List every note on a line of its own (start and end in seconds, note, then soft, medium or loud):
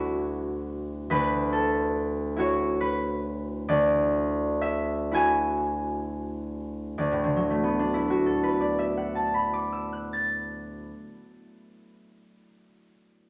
0.00 1.09 D2 soft
0.00 1.29 D4 soft
0.00 2.36 E4 soft
0.00 2.37 F#4 soft
0.00 2.50 D5 soft
0.00 2.09 E5 soft
0.00 2.49 D6 medium
0.00 2.08 E6 medium
1.10 3.67 D2 medium
1.10 1.82 B4 medium
1.53 3.71 A4 medium
2.37 5.11 E4 soft
2.37 5.12 F#4 soft
2.37 3.71 C#5 medium
2.81 6.71 B4 medium
3.68 6.97 D2 soft
3.68 5.34 D5 medium
4.61 8.51 E5 medium
5.11 7.93 E4 soft
5.11 8.09 F#4 soft
5.11 7.03 G#5 medium
6.98 10.88 D2 soft
6.98 8.60 D5 soft
7.12 11.02 A2 soft
7.24 11.14 D3 soft
7.36 11.09 F#3 soft
7.50 11.23 A3 soft
7.63 11.37 B3 soft
7.79 11.52 D4 soft
7.94 11.67 E4 soft
8.10 11.83 F#4 soft
8.26 11.87 A4 soft
8.43 11.87 B4 soft
8.61 11.87 D5 soft
8.79 11.87 E5 soft
8.97 11.87 F#5 soft
9.15 11.87 A5 soft
9.34 11.87 B5 soft
9.53 11.87 D6 soft
9.73 11.86 E6 soft
9.93 11.86 F#6 soft
10.13 11.86 A6 soft